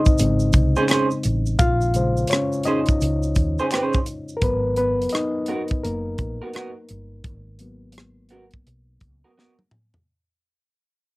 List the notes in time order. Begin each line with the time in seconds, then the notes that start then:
Already playing: C#3 G#3 C4 D#4 C5 D#5
0.05 kick, shaker
0.18 G#1 C#3 G#3 C4, closed hi-hat, shaker
0.40 shaker
0.53 C2, kick, closed hi-hat, shaker
0.76 C#4 G#4 C5, shaker
0.88 C#4 G#4 C5, finger snap, cross-stick, closed hi-hat, shaker
1.11 shaker
1.23 A1, closed hi-hat, shaker
1.46 shaker
1.59 A#1 F4 F5, kick, closed hi-hat, shaker
1.81 shaker
1.94 C#3 G#3 C5, closed hi-hat, shaker
2.17 shaker
2.27 C#5, finger snap, closed hi-hat, shaker
2.32 C#4, cross-stick
2.52 shaker
2.63 C#4 G#4 D#5, closed hi-hat, shaker
2.67 D#4 C5
2.86 kick, closed hi-hat, shaker
3.01 C#2, closed hi-hat, shaker
3.23 shaker
3.35 D#2, kick, closed hi-hat, shaker
3.59 C#4 G#4 C5, shaker
3.71 C#4 G#4 C5, finger snap, cross-stick, closed hi-hat, shaker
3.93 kick, shaker
4.06 closed hi-hat, shaker
4.29 shaker
4.37 A#4
4.42 G#1 F#3 B3 A#4 B4, kick, closed hi-hat
4.76 B3 B4, closed hi-hat
5.02 closed hi-hat
5.09 D#5, closed hi-hat
5.14 D#4, cross-stick
5.46 B3 F#4 A#4, closed hi-hat
5.68 kick, closed hi-hat
5.83 F#1 A#3 A#4, closed hi-hat
6.18 A#1, kick, closed hi-hat
6.42 B3 F#4 A#4
6.54 B3 F#4 A#4, cross-stick, closed hi-hat
6.89 G1, closed hi-hat
7.24 G#1, kick, closed hi-hat
7.59 F#3 A#3 B3, closed hi-hat
7.92 closed hi-hat
7.98 cross-stick
8.29 B3 F#4 A#4, closed hi-hat
8.51 kick, closed hi-hat
8.67 B1, closed hi-hat
9.01 C#2, kick, closed hi-hat
9.24 B3 F#4 A#4
9.38 B3 F#4 A#4, snare
9.59 high tom
9.71 mid tom
9.94 floor tom